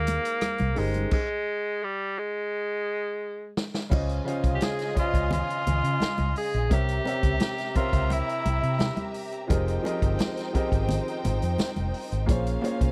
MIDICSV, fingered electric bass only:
0, 0, Header, 1, 3, 480
1, 0, Start_track
1, 0, Tempo, 697674
1, 772, Time_signature, 4, 2, 24, 8
1, 8887, End_track
2, 0, Start_track
2, 0, Title_t, "Fingered electric bass"
2, 0, Program_c, 0, 33
2, 0, Note_on_c, 0, 39, 71
2, 121, Note_off_c, 0, 39, 0
2, 418, Note_on_c, 0, 36, 76
2, 509, Note_off_c, 0, 36, 0
2, 536, Note_on_c, 0, 31, 74
2, 722, Note_off_c, 0, 31, 0
2, 2696, Note_on_c, 0, 37, 94
2, 2883, Note_off_c, 0, 37, 0
2, 3054, Note_on_c, 0, 36, 84
2, 3148, Note_off_c, 0, 36, 0
2, 3536, Note_on_c, 0, 37, 79
2, 3723, Note_off_c, 0, 37, 0
2, 3900, Note_on_c, 0, 37, 82
2, 3992, Note_off_c, 0, 37, 0
2, 4016, Note_on_c, 0, 49, 87
2, 4110, Note_off_c, 0, 49, 0
2, 4259, Note_on_c, 0, 37, 78
2, 4352, Note_off_c, 0, 37, 0
2, 4502, Note_on_c, 0, 34, 92
2, 4593, Note_off_c, 0, 34, 0
2, 4620, Note_on_c, 0, 36, 83
2, 4805, Note_off_c, 0, 36, 0
2, 4977, Note_on_c, 0, 37, 82
2, 5070, Note_off_c, 0, 37, 0
2, 5456, Note_on_c, 0, 37, 86
2, 5643, Note_off_c, 0, 37, 0
2, 5818, Note_on_c, 0, 36, 86
2, 5911, Note_off_c, 0, 36, 0
2, 5938, Note_on_c, 0, 48, 85
2, 6124, Note_off_c, 0, 48, 0
2, 6538, Note_on_c, 0, 29, 97
2, 6723, Note_off_c, 0, 29, 0
2, 6896, Note_on_c, 0, 31, 93
2, 6989, Note_off_c, 0, 31, 0
2, 7375, Note_on_c, 0, 32, 79
2, 7562, Note_off_c, 0, 32, 0
2, 7743, Note_on_c, 0, 32, 86
2, 7833, Note_off_c, 0, 32, 0
2, 7862, Note_on_c, 0, 41, 83
2, 7952, Note_off_c, 0, 41, 0
2, 8101, Note_on_c, 0, 29, 84
2, 8192, Note_off_c, 0, 29, 0
2, 8340, Note_on_c, 0, 32, 83
2, 8431, Note_off_c, 0, 32, 0
2, 8455, Note_on_c, 0, 34, 83
2, 8641, Note_off_c, 0, 34, 0
2, 8814, Note_on_c, 0, 36, 79
2, 8887, Note_off_c, 0, 36, 0
2, 8887, End_track
3, 0, Start_track
3, 0, Title_t, "Muted fingered electric bass strokes"
3, 3418, Note_on_c, 9, 29, 49
3, 3487, Note_off_c, 9, 29, 0
3, 4139, Note_on_c, 9, 29, 44
3, 4208, Note_off_c, 9, 29, 0
3, 5339, Note_on_c, 9, 29, 44
3, 5408, Note_off_c, 9, 29, 0
3, 7261, Note_on_c, 9, 29, 46
3, 7329, Note_off_c, 9, 29, 0
3, 7984, Note_on_c, 9, 29, 45
3, 8052, Note_off_c, 9, 29, 0
3, 8887, End_track
0, 0, End_of_file